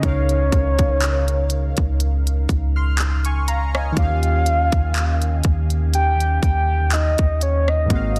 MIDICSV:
0, 0, Header, 1, 5, 480
1, 0, Start_track
1, 0, Tempo, 983607
1, 16, Time_signature, 4, 2, 24, 8
1, 3999, End_track
2, 0, Start_track
2, 0, Title_t, "Soft synth lead"
2, 0, Program_c, 0, 80
2, 22, Note_on_c, 0, 73, 96
2, 979, Note_off_c, 0, 73, 0
2, 1943, Note_on_c, 0, 77, 125
2, 2640, Note_off_c, 0, 77, 0
2, 2902, Note_on_c, 0, 79, 114
2, 3122, Note_off_c, 0, 79, 0
2, 3143, Note_on_c, 0, 79, 113
2, 3383, Note_on_c, 0, 75, 99
2, 3390, Note_off_c, 0, 79, 0
2, 3623, Note_on_c, 0, 73, 95
2, 3631, Note_off_c, 0, 75, 0
2, 3752, Note_on_c, 0, 75, 92
2, 3760, Note_off_c, 0, 73, 0
2, 3859, Note_off_c, 0, 75, 0
2, 3863, Note_on_c, 0, 75, 105
2, 3999, Note_off_c, 0, 75, 0
2, 3999, End_track
3, 0, Start_track
3, 0, Title_t, "Synth keys"
3, 0, Program_c, 1, 88
3, 0, Control_c, 1, 64, 127
3, 0, Note_on_c, 1, 49, 69
3, 4, Note_on_c, 1, 61, 64
3, 16, Note_on_c, 1, 63, 65
3, 28, Note_on_c, 1, 70, 64
3, 40, Note_on_c, 1, 77, 76
3, 1208, Note_off_c, 1, 77, 0
3, 1347, Note_on_c, 1, 89, 67
3, 1350, Note_on_c, 1, 84, 60
3, 1574, Note_off_c, 1, 89, 0
3, 1576, Note_off_c, 1, 84, 0
3, 1588, Note_on_c, 1, 85, 74
3, 1590, Note_on_c, 1, 80, 62
3, 1691, Note_off_c, 1, 85, 0
3, 1693, Note_off_c, 1, 80, 0
3, 1698, Note_on_c, 1, 82, 76
3, 1701, Note_on_c, 1, 77, 64
3, 1820, Note_off_c, 1, 82, 0
3, 1822, Note_off_c, 1, 77, 0
3, 1829, Note_on_c, 1, 80, 68
3, 1831, Note_on_c, 1, 75, 59
3, 1904, Note_off_c, 1, 49, 0
3, 1911, Note_off_c, 1, 61, 0
3, 1914, Note_on_c, 1, 51, 70
3, 1916, Note_off_c, 1, 63, 0
3, 1922, Note_off_c, 1, 70, 0
3, 1925, Note_on_c, 1, 58, 64
3, 1937, Note_on_c, 1, 61, 65
3, 1942, Control_c, 1, 64, 0
3, 1949, Note_on_c, 1, 67, 66
3, 1962, Note_on_c, 1, 77, 76
3, 2024, Control_c, 1, 64, 127
3, 2055, Note_off_c, 1, 80, 0
3, 2056, Note_off_c, 1, 75, 0
3, 3825, Note_off_c, 1, 51, 0
3, 3831, Note_off_c, 1, 58, 0
3, 3833, Note_on_c, 1, 44, 68
3, 3837, Note_off_c, 1, 61, 0
3, 3842, Note_on_c, 1, 51, 61
3, 3843, Note_off_c, 1, 67, 0
3, 3849, Note_off_c, 1, 77, 0
3, 3852, Note_on_c, 1, 58, 65
3, 3862, Control_c, 1, 64, 0
3, 3862, Note_on_c, 1, 60, 64
3, 3871, Note_on_c, 1, 66, 62
3, 3881, Note_on_c, 1, 77, 77
3, 3944, Control_c, 1, 64, 127
3, 3999, Note_off_c, 1, 44, 0
3, 3999, Note_off_c, 1, 51, 0
3, 3999, Note_off_c, 1, 58, 0
3, 3999, Note_off_c, 1, 60, 0
3, 3999, Note_off_c, 1, 66, 0
3, 3999, Note_off_c, 1, 77, 0
3, 3999, End_track
4, 0, Start_track
4, 0, Title_t, "808-style bass"
4, 0, Program_c, 2, 38
4, 16, Note_on_c, 2, 37, 113
4, 246, Note_off_c, 2, 37, 0
4, 257, Note_on_c, 2, 37, 104
4, 846, Note_off_c, 2, 37, 0
4, 868, Note_on_c, 2, 37, 99
4, 1203, Note_off_c, 2, 37, 0
4, 1216, Note_on_c, 2, 37, 102
4, 1916, Note_off_c, 2, 37, 0
4, 1937, Note_on_c, 2, 39, 115
4, 2291, Note_off_c, 2, 39, 0
4, 2307, Note_on_c, 2, 39, 99
4, 2642, Note_off_c, 2, 39, 0
4, 2658, Note_on_c, 2, 39, 112
4, 3118, Note_off_c, 2, 39, 0
4, 3137, Note_on_c, 2, 39, 109
4, 3491, Note_off_c, 2, 39, 0
4, 3509, Note_on_c, 2, 39, 104
4, 3844, Note_off_c, 2, 39, 0
4, 3856, Note_on_c, 2, 32, 112
4, 3999, Note_off_c, 2, 32, 0
4, 3999, End_track
5, 0, Start_track
5, 0, Title_t, "Drums"
5, 15, Note_on_c, 9, 36, 119
5, 15, Note_on_c, 9, 42, 76
5, 64, Note_off_c, 9, 36, 0
5, 64, Note_off_c, 9, 42, 0
5, 142, Note_on_c, 9, 42, 50
5, 191, Note_off_c, 9, 42, 0
5, 256, Note_on_c, 9, 36, 98
5, 256, Note_on_c, 9, 42, 67
5, 304, Note_off_c, 9, 36, 0
5, 305, Note_off_c, 9, 42, 0
5, 384, Note_on_c, 9, 42, 55
5, 385, Note_on_c, 9, 36, 96
5, 432, Note_off_c, 9, 42, 0
5, 434, Note_off_c, 9, 36, 0
5, 498, Note_on_c, 9, 39, 108
5, 499, Note_on_c, 9, 42, 68
5, 547, Note_off_c, 9, 39, 0
5, 548, Note_off_c, 9, 42, 0
5, 625, Note_on_c, 9, 42, 46
5, 674, Note_off_c, 9, 42, 0
5, 731, Note_on_c, 9, 42, 66
5, 780, Note_off_c, 9, 42, 0
5, 862, Note_on_c, 9, 42, 49
5, 867, Note_on_c, 9, 36, 92
5, 911, Note_off_c, 9, 42, 0
5, 916, Note_off_c, 9, 36, 0
5, 976, Note_on_c, 9, 42, 73
5, 1025, Note_off_c, 9, 42, 0
5, 1108, Note_on_c, 9, 42, 48
5, 1156, Note_off_c, 9, 42, 0
5, 1216, Note_on_c, 9, 36, 94
5, 1219, Note_on_c, 9, 42, 69
5, 1264, Note_off_c, 9, 36, 0
5, 1268, Note_off_c, 9, 42, 0
5, 1455, Note_on_c, 9, 42, 75
5, 1458, Note_on_c, 9, 39, 106
5, 1503, Note_off_c, 9, 42, 0
5, 1506, Note_off_c, 9, 39, 0
5, 1584, Note_on_c, 9, 42, 50
5, 1633, Note_off_c, 9, 42, 0
5, 1698, Note_on_c, 9, 42, 81
5, 1747, Note_off_c, 9, 42, 0
5, 1828, Note_on_c, 9, 37, 100
5, 1877, Note_off_c, 9, 37, 0
5, 1936, Note_on_c, 9, 36, 116
5, 1937, Note_on_c, 9, 42, 72
5, 1985, Note_off_c, 9, 36, 0
5, 1986, Note_off_c, 9, 42, 0
5, 2064, Note_on_c, 9, 42, 49
5, 2113, Note_off_c, 9, 42, 0
5, 2177, Note_on_c, 9, 42, 69
5, 2226, Note_off_c, 9, 42, 0
5, 2305, Note_on_c, 9, 42, 52
5, 2306, Note_on_c, 9, 36, 101
5, 2354, Note_off_c, 9, 36, 0
5, 2354, Note_off_c, 9, 42, 0
5, 2419, Note_on_c, 9, 39, 112
5, 2420, Note_on_c, 9, 42, 72
5, 2468, Note_off_c, 9, 39, 0
5, 2469, Note_off_c, 9, 42, 0
5, 2546, Note_on_c, 9, 42, 49
5, 2594, Note_off_c, 9, 42, 0
5, 2652, Note_on_c, 9, 42, 66
5, 2658, Note_on_c, 9, 36, 98
5, 2701, Note_off_c, 9, 42, 0
5, 2707, Note_off_c, 9, 36, 0
5, 2783, Note_on_c, 9, 42, 48
5, 2832, Note_off_c, 9, 42, 0
5, 2897, Note_on_c, 9, 42, 77
5, 2945, Note_off_c, 9, 42, 0
5, 3028, Note_on_c, 9, 42, 50
5, 3077, Note_off_c, 9, 42, 0
5, 3136, Note_on_c, 9, 36, 97
5, 3140, Note_on_c, 9, 42, 66
5, 3185, Note_off_c, 9, 36, 0
5, 3189, Note_off_c, 9, 42, 0
5, 3374, Note_on_c, 9, 42, 77
5, 3377, Note_on_c, 9, 39, 106
5, 3423, Note_off_c, 9, 42, 0
5, 3426, Note_off_c, 9, 39, 0
5, 3505, Note_on_c, 9, 42, 51
5, 3508, Note_on_c, 9, 36, 106
5, 3554, Note_off_c, 9, 42, 0
5, 3557, Note_off_c, 9, 36, 0
5, 3618, Note_on_c, 9, 42, 78
5, 3667, Note_off_c, 9, 42, 0
5, 3748, Note_on_c, 9, 37, 91
5, 3797, Note_off_c, 9, 37, 0
5, 3856, Note_on_c, 9, 36, 112
5, 3856, Note_on_c, 9, 42, 75
5, 3905, Note_off_c, 9, 36, 0
5, 3905, Note_off_c, 9, 42, 0
5, 3982, Note_on_c, 9, 42, 47
5, 3999, Note_off_c, 9, 42, 0
5, 3999, End_track
0, 0, End_of_file